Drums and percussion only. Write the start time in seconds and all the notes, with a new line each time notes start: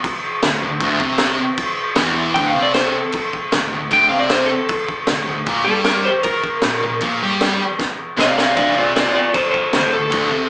0.04 kick, crash
0.42 snare, crash
0.81 kick, crash
1.00 kick
1.18 snare, crash
1.57 kick, crash
1.96 snare, crash
2.35 kick, crash
2.74 snare, crash
3.12 kick, crash
3.33 kick
3.52 snare, crash
3.91 kick, crash
4.30 snare, crash
4.69 kick, crash
4.89 kick
5.07 snare, crash
5.46 kick, crash
5.84 snare, crash
6.23 kick, crash
6.44 kick
6.62 snare, crash
7.01 kick, crash
7.41 snare, crash
7.79 kick, snare
8.18 snare
8.38 snare
8.57 kick, crash
8.96 snare, crash
9.34 kick, crash
9.54 kick
9.73 snare, crash
10.12 kick, crash